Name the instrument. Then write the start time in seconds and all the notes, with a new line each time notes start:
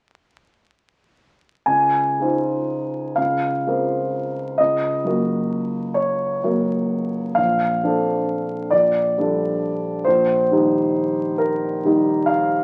grand piano
1.66 C#2 G#5
2.19 G#3 D#4 F4 C5
3.16 C#2 F5
3.67 G#3 C4 F4 A#4
4.58 C#2 D#5
5.04 F#3 A#3 F#4 A#4
5.94 C#5
6.44 F#3 A#3 F#4 A#4
7.35 A#1 F5
7.83 F3 C4 D4 A4
8.70 A#1 D5
9.18 F3 G3 D4 A4
10.04 A#1 C5
10.51 D#3 G3 D#4 G4
11.38 A#4
11.84 D#3 G3 D#4 G4
12.26 F5